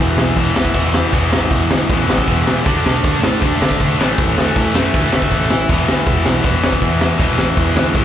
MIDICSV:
0, 0, Header, 1, 5, 480
1, 0, Start_track
1, 0, Tempo, 379027
1, 1435, Time_signature, 4, 2, 24, 8
1, 10191, End_track
2, 0, Start_track
2, 0, Title_t, "Distorted electric guitar"
2, 0, Program_c, 0, 30
2, 0, Note_on_c, 0, 40, 88
2, 0, Note_on_c, 0, 47, 93
2, 0, Note_on_c, 0, 52, 114
2, 659, Note_off_c, 0, 52, 0
2, 665, Note_off_c, 0, 47, 0
2, 674, Note_on_c, 0, 52, 89
2, 680, Note_off_c, 0, 40, 0
2, 681, Note_on_c, 0, 47, 75
2, 695, Note_on_c, 0, 40, 74
2, 897, Note_off_c, 0, 40, 0
2, 912, Note_on_c, 0, 40, 88
2, 919, Note_off_c, 0, 52, 0
2, 922, Note_off_c, 0, 47, 0
2, 935, Note_on_c, 0, 47, 87
2, 941, Note_on_c, 0, 52, 94
2, 1391, Note_off_c, 0, 40, 0
2, 1406, Note_on_c, 0, 40, 94
2, 1409, Note_off_c, 0, 47, 0
2, 1415, Note_off_c, 0, 52, 0
2, 1424, Note_on_c, 0, 47, 92
2, 1432, Note_on_c, 0, 52, 96
2, 2599, Note_off_c, 0, 52, 0
2, 2612, Note_off_c, 0, 40, 0
2, 2614, Note_on_c, 0, 52, 81
2, 2618, Note_off_c, 0, 47, 0
2, 2633, Note_on_c, 0, 47, 84
2, 2648, Note_on_c, 0, 40, 81
2, 2849, Note_off_c, 0, 40, 0
2, 2854, Note_off_c, 0, 52, 0
2, 2864, Note_off_c, 0, 47, 0
2, 2865, Note_on_c, 0, 40, 83
2, 2890, Note_on_c, 0, 47, 89
2, 2902, Note_on_c, 0, 52, 88
2, 3340, Note_off_c, 0, 40, 0
2, 3340, Note_off_c, 0, 47, 0
2, 3345, Note_on_c, 0, 50, 87
2, 3359, Note_off_c, 0, 52, 0
2, 3368, Note_on_c, 0, 57, 95
2, 3376, Note_on_c, 0, 62, 107
2, 4538, Note_off_c, 0, 62, 0
2, 4540, Note_off_c, 0, 50, 0
2, 4552, Note_off_c, 0, 57, 0
2, 4553, Note_on_c, 0, 62, 93
2, 4571, Note_on_c, 0, 57, 72
2, 4577, Note_on_c, 0, 50, 69
2, 4784, Note_off_c, 0, 62, 0
2, 4787, Note_off_c, 0, 50, 0
2, 4793, Note_off_c, 0, 57, 0
2, 4802, Note_on_c, 0, 50, 76
2, 4817, Note_on_c, 0, 57, 81
2, 4831, Note_on_c, 0, 62, 84
2, 5028, Note_off_c, 0, 50, 0
2, 5035, Note_off_c, 0, 57, 0
2, 5043, Note_off_c, 0, 62, 0
2, 5043, Note_on_c, 0, 45, 94
2, 5063, Note_on_c, 0, 52, 106
2, 5078, Note_on_c, 0, 57, 124
2, 6225, Note_off_c, 0, 45, 0
2, 6243, Note_off_c, 0, 57, 0
2, 6250, Note_on_c, 0, 45, 83
2, 6259, Note_off_c, 0, 52, 0
2, 6265, Note_on_c, 0, 52, 81
2, 6277, Note_on_c, 0, 57, 95
2, 6470, Note_off_c, 0, 45, 0
2, 6478, Note_off_c, 0, 57, 0
2, 6494, Note_off_c, 0, 52, 0
2, 6494, Note_on_c, 0, 57, 90
2, 6499, Note_on_c, 0, 52, 90
2, 6516, Note_on_c, 0, 45, 78
2, 6950, Note_off_c, 0, 57, 0
2, 6961, Note_off_c, 0, 45, 0
2, 7220, Note_on_c, 0, 40, 92
2, 7236, Note_on_c, 0, 47, 101
2, 7244, Note_off_c, 0, 52, 0
2, 7249, Note_on_c, 0, 52, 97
2, 8387, Note_off_c, 0, 40, 0
2, 8395, Note_off_c, 0, 47, 0
2, 8396, Note_off_c, 0, 52, 0
2, 8411, Note_on_c, 0, 52, 94
2, 8425, Note_on_c, 0, 47, 75
2, 8442, Note_on_c, 0, 40, 68
2, 8624, Note_off_c, 0, 52, 0
2, 8631, Note_off_c, 0, 40, 0
2, 8631, Note_off_c, 0, 47, 0
2, 8647, Note_on_c, 0, 40, 85
2, 8664, Note_on_c, 0, 47, 81
2, 8670, Note_on_c, 0, 52, 86
2, 9092, Note_off_c, 0, 40, 0
2, 9107, Note_on_c, 0, 40, 84
2, 9109, Note_off_c, 0, 47, 0
2, 9112, Note_off_c, 0, 52, 0
2, 9122, Note_on_c, 0, 47, 85
2, 9130, Note_on_c, 0, 52, 102
2, 10191, Note_off_c, 0, 40, 0
2, 10191, Note_off_c, 0, 47, 0
2, 10191, Note_off_c, 0, 52, 0
2, 10191, End_track
3, 0, Start_track
3, 0, Title_t, "Distorted electric guitar"
3, 0, Program_c, 1, 30
3, 457, Note_on_c, 1, 40, 82
3, 477, Note_on_c, 1, 47, 85
3, 491, Note_on_c, 1, 52, 105
3, 1399, Note_off_c, 1, 40, 0
3, 1425, Note_off_c, 1, 47, 0
3, 1433, Note_off_c, 1, 52, 0
3, 2400, Note_on_c, 1, 40, 72
3, 2423, Note_on_c, 1, 47, 87
3, 2433, Note_on_c, 1, 52, 81
3, 3334, Note_off_c, 1, 47, 0
3, 3349, Note_off_c, 1, 40, 0
3, 3357, Note_off_c, 1, 52, 0
3, 4306, Note_on_c, 1, 50, 84
3, 4332, Note_on_c, 1, 57, 95
3, 4352, Note_on_c, 1, 62, 89
3, 5020, Note_off_c, 1, 50, 0
3, 5033, Note_off_c, 1, 57, 0
3, 5043, Note_off_c, 1, 62, 0
3, 6000, Note_on_c, 1, 57, 100
3, 6024, Note_on_c, 1, 52, 81
3, 6045, Note_on_c, 1, 45, 70
3, 6942, Note_off_c, 1, 57, 0
3, 6965, Note_off_c, 1, 45, 0
3, 7242, Note_off_c, 1, 52, 0
3, 8132, Note_on_c, 1, 40, 86
3, 8152, Note_on_c, 1, 47, 86
3, 8176, Note_on_c, 1, 52, 93
3, 9081, Note_off_c, 1, 40, 0
3, 9091, Note_off_c, 1, 47, 0
3, 9103, Note_off_c, 1, 52, 0
3, 10070, Note_on_c, 1, 40, 92
3, 10085, Note_on_c, 1, 47, 94
3, 10101, Note_on_c, 1, 52, 106
3, 10191, Note_off_c, 1, 40, 0
3, 10191, Note_off_c, 1, 47, 0
3, 10191, Note_off_c, 1, 52, 0
3, 10191, End_track
4, 0, Start_track
4, 0, Title_t, "Picked electric bass"
4, 0, Program_c, 2, 34
4, 0, Note_on_c, 2, 28, 94
4, 149, Note_off_c, 2, 28, 0
4, 210, Note_on_c, 2, 35, 96
4, 382, Note_off_c, 2, 35, 0
4, 466, Note_on_c, 2, 28, 83
4, 633, Note_off_c, 2, 28, 0
4, 701, Note_on_c, 2, 40, 98
4, 871, Note_off_c, 2, 40, 0
4, 946, Note_on_c, 2, 40, 96
4, 1281, Note_off_c, 2, 40, 0
4, 1431, Note_on_c, 2, 28, 99
4, 1599, Note_off_c, 2, 28, 0
4, 1684, Note_on_c, 2, 33, 81
4, 1848, Note_off_c, 2, 33, 0
4, 1912, Note_on_c, 2, 40, 106
4, 2081, Note_off_c, 2, 40, 0
4, 2151, Note_on_c, 2, 38, 100
4, 2321, Note_off_c, 2, 38, 0
4, 2401, Note_on_c, 2, 33, 90
4, 2567, Note_off_c, 2, 33, 0
4, 2635, Note_on_c, 2, 33, 96
4, 2803, Note_off_c, 2, 33, 0
4, 2885, Note_on_c, 2, 28, 87
4, 3050, Note_off_c, 2, 28, 0
4, 3121, Note_on_c, 2, 28, 93
4, 3288, Note_off_c, 2, 28, 0
4, 3368, Note_on_c, 2, 38, 102
4, 3532, Note_off_c, 2, 38, 0
4, 3609, Note_on_c, 2, 35, 83
4, 3773, Note_off_c, 2, 35, 0
4, 3853, Note_on_c, 2, 38, 102
4, 4016, Note_off_c, 2, 38, 0
4, 4087, Note_on_c, 2, 45, 96
4, 4251, Note_off_c, 2, 45, 0
4, 4332, Note_on_c, 2, 38, 81
4, 4495, Note_off_c, 2, 38, 0
4, 4581, Note_on_c, 2, 50, 99
4, 4740, Note_off_c, 2, 50, 0
4, 4819, Note_on_c, 2, 50, 94
4, 4979, Note_off_c, 2, 50, 0
4, 5074, Note_on_c, 2, 33, 101
4, 5229, Note_off_c, 2, 33, 0
4, 5296, Note_on_c, 2, 33, 109
4, 5457, Note_off_c, 2, 33, 0
4, 5547, Note_on_c, 2, 38, 87
4, 5704, Note_off_c, 2, 38, 0
4, 5771, Note_on_c, 2, 45, 105
4, 5933, Note_off_c, 2, 45, 0
4, 6012, Note_on_c, 2, 42, 109
4, 6173, Note_off_c, 2, 42, 0
4, 6260, Note_on_c, 2, 38, 98
4, 6418, Note_off_c, 2, 38, 0
4, 6500, Note_on_c, 2, 38, 94
4, 6658, Note_off_c, 2, 38, 0
4, 6732, Note_on_c, 2, 33, 92
4, 6892, Note_off_c, 2, 33, 0
4, 6982, Note_on_c, 2, 33, 98
4, 7138, Note_off_c, 2, 33, 0
4, 7208, Note_on_c, 2, 28, 106
4, 7369, Note_off_c, 2, 28, 0
4, 7450, Note_on_c, 2, 38, 85
4, 7609, Note_off_c, 2, 38, 0
4, 7684, Note_on_c, 2, 28, 108
4, 7845, Note_off_c, 2, 28, 0
4, 7931, Note_on_c, 2, 35, 106
4, 8089, Note_off_c, 2, 35, 0
4, 8161, Note_on_c, 2, 28, 80
4, 8322, Note_off_c, 2, 28, 0
4, 8399, Note_on_c, 2, 40, 91
4, 8560, Note_off_c, 2, 40, 0
4, 8637, Note_on_c, 2, 40, 97
4, 8963, Note_off_c, 2, 40, 0
4, 9110, Note_on_c, 2, 28, 99
4, 9273, Note_off_c, 2, 28, 0
4, 9347, Note_on_c, 2, 33, 84
4, 9510, Note_off_c, 2, 33, 0
4, 9588, Note_on_c, 2, 40, 100
4, 9751, Note_off_c, 2, 40, 0
4, 9819, Note_on_c, 2, 38, 100
4, 9985, Note_off_c, 2, 38, 0
4, 10065, Note_on_c, 2, 33, 93
4, 10191, Note_off_c, 2, 33, 0
4, 10191, End_track
5, 0, Start_track
5, 0, Title_t, "Drums"
5, 227, Note_on_c, 9, 38, 121
5, 354, Note_off_c, 9, 38, 0
5, 461, Note_on_c, 9, 36, 109
5, 461, Note_on_c, 9, 49, 64
5, 588, Note_off_c, 9, 36, 0
5, 588, Note_off_c, 9, 49, 0
5, 712, Note_on_c, 9, 38, 119
5, 821, Note_on_c, 9, 36, 93
5, 838, Note_off_c, 9, 38, 0
5, 934, Note_on_c, 9, 49, 73
5, 943, Note_off_c, 9, 36, 0
5, 943, Note_on_c, 9, 36, 100
5, 1061, Note_off_c, 9, 49, 0
5, 1070, Note_off_c, 9, 36, 0
5, 1192, Note_on_c, 9, 38, 107
5, 1319, Note_off_c, 9, 38, 0
5, 1431, Note_on_c, 9, 36, 123
5, 1434, Note_on_c, 9, 49, 76
5, 1558, Note_off_c, 9, 36, 0
5, 1560, Note_off_c, 9, 49, 0
5, 1679, Note_on_c, 9, 38, 108
5, 1805, Note_off_c, 9, 38, 0
5, 1903, Note_on_c, 9, 49, 77
5, 1912, Note_on_c, 9, 36, 121
5, 2029, Note_off_c, 9, 49, 0
5, 2038, Note_off_c, 9, 36, 0
5, 2161, Note_on_c, 9, 38, 120
5, 2288, Note_off_c, 9, 38, 0
5, 2400, Note_on_c, 9, 36, 112
5, 2400, Note_on_c, 9, 49, 69
5, 2527, Note_off_c, 9, 36, 0
5, 2527, Note_off_c, 9, 49, 0
5, 2656, Note_on_c, 9, 38, 114
5, 2763, Note_on_c, 9, 36, 89
5, 2782, Note_off_c, 9, 38, 0
5, 2878, Note_on_c, 9, 49, 65
5, 2884, Note_off_c, 9, 36, 0
5, 2884, Note_on_c, 9, 36, 103
5, 3004, Note_off_c, 9, 49, 0
5, 3010, Note_off_c, 9, 36, 0
5, 3132, Note_on_c, 9, 38, 113
5, 3258, Note_off_c, 9, 38, 0
5, 3369, Note_on_c, 9, 36, 127
5, 3373, Note_on_c, 9, 49, 71
5, 3496, Note_off_c, 9, 36, 0
5, 3499, Note_off_c, 9, 49, 0
5, 3623, Note_on_c, 9, 38, 107
5, 3750, Note_off_c, 9, 38, 0
5, 3851, Note_on_c, 9, 36, 113
5, 3851, Note_on_c, 9, 49, 71
5, 3978, Note_off_c, 9, 36, 0
5, 3978, Note_off_c, 9, 49, 0
5, 4097, Note_on_c, 9, 38, 127
5, 4224, Note_off_c, 9, 38, 0
5, 4330, Note_on_c, 9, 49, 67
5, 4331, Note_on_c, 9, 36, 119
5, 4457, Note_off_c, 9, 49, 0
5, 4458, Note_off_c, 9, 36, 0
5, 4586, Note_on_c, 9, 38, 113
5, 4698, Note_on_c, 9, 36, 99
5, 4712, Note_off_c, 9, 38, 0
5, 4818, Note_off_c, 9, 36, 0
5, 4818, Note_on_c, 9, 36, 96
5, 4827, Note_on_c, 9, 49, 64
5, 4944, Note_off_c, 9, 36, 0
5, 4954, Note_off_c, 9, 49, 0
5, 5076, Note_on_c, 9, 38, 121
5, 5203, Note_off_c, 9, 38, 0
5, 5297, Note_on_c, 9, 36, 125
5, 5299, Note_on_c, 9, 49, 81
5, 5424, Note_off_c, 9, 36, 0
5, 5426, Note_off_c, 9, 49, 0
5, 5547, Note_on_c, 9, 38, 108
5, 5673, Note_off_c, 9, 38, 0
5, 5777, Note_on_c, 9, 36, 113
5, 5777, Note_on_c, 9, 49, 74
5, 5903, Note_off_c, 9, 36, 0
5, 5903, Note_off_c, 9, 49, 0
5, 6020, Note_on_c, 9, 38, 125
5, 6147, Note_off_c, 9, 38, 0
5, 6255, Note_on_c, 9, 49, 69
5, 6257, Note_on_c, 9, 36, 111
5, 6381, Note_off_c, 9, 49, 0
5, 6384, Note_off_c, 9, 36, 0
5, 6492, Note_on_c, 9, 38, 120
5, 6613, Note_on_c, 9, 36, 83
5, 6618, Note_off_c, 9, 38, 0
5, 6727, Note_on_c, 9, 49, 66
5, 6733, Note_off_c, 9, 36, 0
5, 6733, Note_on_c, 9, 36, 98
5, 6854, Note_off_c, 9, 49, 0
5, 6860, Note_off_c, 9, 36, 0
5, 6971, Note_on_c, 9, 38, 101
5, 7098, Note_off_c, 9, 38, 0
5, 7206, Note_on_c, 9, 49, 79
5, 7210, Note_on_c, 9, 36, 121
5, 7333, Note_off_c, 9, 49, 0
5, 7337, Note_off_c, 9, 36, 0
5, 7451, Note_on_c, 9, 38, 107
5, 7578, Note_off_c, 9, 38, 0
5, 7675, Note_on_c, 9, 49, 61
5, 7682, Note_on_c, 9, 36, 127
5, 7801, Note_off_c, 9, 49, 0
5, 7809, Note_off_c, 9, 36, 0
5, 7923, Note_on_c, 9, 38, 122
5, 8049, Note_off_c, 9, 38, 0
5, 8147, Note_on_c, 9, 49, 64
5, 8159, Note_on_c, 9, 36, 123
5, 8274, Note_off_c, 9, 49, 0
5, 8285, Note_off_c, 9, 36, 0
5, 8403, Note_on_c, 9, 38, 127
5, 8518, Note_on_c, 9, 36, 94
5, 8530, Note_off_c, 9, 38, 0
5, 8632, Note_on_c, 9, 49, 66
5, 8637, Note_off_c, 9, 36, 0
5, 8637, Note_on_c, 9, 36, 93
5, 8759, Note_off_c, 9, 49, 0
5, 8763, Note_off_c, 9, 36, 0
5, 8880, Note_on_c, 9, 38, 105
5, 9007, Note_off_c, 9, 38, 0
5, 9106, Note_on_c, 9, 49, 67
5, 9113, Note_on_c, 9, 36, 127
5, 9233, Note_off_c, 9, 49, 0
5, 9239, Note_off_c, 9, 36, 0
5, 9350, Note_on_c, 9, 38, 106
5, 9476, Note_off_c, 9, 38, 0
5, 9584, Note_on_c, 9, 49, 80
5, 9589, Note_on_c, 9, 36, 120
5, 9710, Note_off_c, 9, 49, 0
5, 9716, Note_off_c, 9, 36, 0
5, 9836, Note_on_c, 9, 38, 115
5, 9962, Note_off_c, 9, 38, 0
5, 10054, Note_on_c, 9, 49, 73
5, 10063, Note_on_c, 9, 36, 125
5, 10181, Note_off_c, 9, 49, 0
5, 10190, Note_off_c, 9, 36, 0
5, 10191, End_track
0, 0, End_of_file